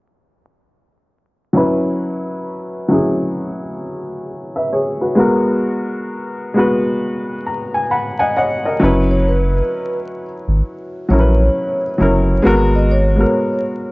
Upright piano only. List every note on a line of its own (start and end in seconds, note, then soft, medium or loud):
1.53 2.63 F#3 medium
1.53 2.63 C#4 medium
1.53 2.64 E4 medium
1.57 2.65 B4 loud
2.88 4.31 F#3 medium
2.88 4.32 C#4 medium
2.88 4.32 E4 medium
2.93 4.28 G#4 medium
4.56 4.72 B4 soft
4.56 4.72 E5 medium
4.73 5.00 G#4 medium
4.73 5.00 C#5 medium
5.01 5.17 F#4 soft
5.01 5.44 B4 medium
5.15 6.26 G#3 loud
5.15 6.26 B3 loud
5.15 6.27 F#4 medium
5.20 6.28 A#4 loud
6.54 7.96 G#3 medium
6.54 7.96 B3 medium
6.54 7.97 F#4 medium
6.59 7.93 B4 medium
7.46 7.72 A#5 medium
7.74 7.90 G#5 medium
7.91 8.18 F#5 medium
7.91 8.18 B5 medium
8.19 8.35 D#5 medium
8.19 8.35 F#5 medium
8.19 8.35 G#5 medium
8.37 8.64 C#5 soft
8.37 8.64 D#5 medium
8.37 8.64 F#5 medium
8.65 9.08 A#4 soft
8.65 9.08 D#5 medium
8.80 10.22 F#3 medium
8.80 10.23 C#4 medium
8.80 10.23 E4 medium
8.84 10.24 B4 medium
11.09 11.84 F#3 medium
11.09 11.85 C#4 medium
11.09 11.86 E4 medium
11.13 11.19 A#4 medium
11.19 11.90 B4 medium
11.98 12.37 F#3 medium
11.98 12.37 C#4 medium
11.98 12.38 E4 medium
12.02 12.39 A#4 medium
12.42 12.98 G#3 medium
12.42 12.99 B3 medium
12.42 13.00 F#4 medium
12.47 13.00 A#4 loud
13.16 13.92 G#3 medium
13.16 13.92 B3 medium
13.16 13.92 F#4 medium
13.20 13.92 A#4 medium